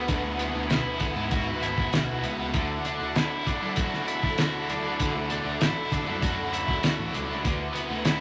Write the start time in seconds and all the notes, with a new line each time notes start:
Already playing: D2 B3 E4 F#4 G#4 B4 F#5
0.08 D3, kick, closed hi-hat
0.23 D2
0.39 B3, closed hi-hat
0.55 D2
0.69 B1 E4, snare, closed hi-hat
1.00 D3 B3, kick, closed hi-hat
1.15 G#2
1.31 F#4, kick, closed hi-hat
1.61 G#1 E4, closed hi-hat
1.78 kick
1.92 B1 F#4, snare, closed hi-hat
2.23 C#2 B3, closed hi-hat
2.53 D2 D3 A4 D5, kick, closed hi-hat
2.85 D4, closed hi-hat, low conga
3.00 D2
3.15 E4, snare, closed hi-hat
3.47 D4, kick, closed hi-hat, low conga
3.62 high conga
3.76 F#4, kick, closed hi-hat, high conga
3.94 snare
4.08 E4, closed hi-hat
4.23 D3, kick, high conga
4.38 F#4, snare, closed hi-hat
4.69 D4, closed hi-hat, high conga, low conga
5.00 D3, kick, closed hi-hat
5.15 D2
5.30 D4, closed hi-hat, low conga
5.45 D2
5.61 A1 E4, snare, closed hi-hat
5.91 D3 D4, kick, closed hi-hat, low conga
6.06 F#2, high conga
6.22 F#4, kick, closed hi-hat, high conga
6.53 E4, closed hi-hat
6.67 kick, high conga
6.83 F#4, snare, closed hi-hat
6.99 A1
7.13 C#2 D4, closed hi-hat, high conga, low conga
7.28 C#2
7.43 D2 D3 E4 G#4 B4 F#5, kick, closed hi-hat
7.73 B3, closed hi-hat, low conga
7.90 D2
8.05 E4, snare, closed hi-hat